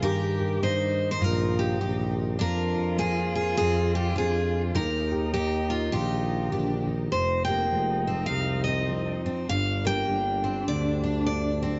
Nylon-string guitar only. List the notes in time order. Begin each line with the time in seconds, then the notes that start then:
0.02 G2 D#3 A#3 D#4 G4
0.40 G4
0.61 D#3
1.20 G2
1.80 D#3
2.38 F2 A#3
2.76 F4
2.97 F3
3.58 F2
4.16 F3
4.75 D#3 D#4
5.12 G4
5.34 A#3
5.92 A#2
6.50 D3
6.87 D#3
7.12 F2
7.48 G4
7.72 F3 G#3
8.29 C3
8.88 F3
9.25 C4
9.48 G2
9.87 G4
10.08 G3 A#3
10.68 D3
11.26 G3
11.62 D4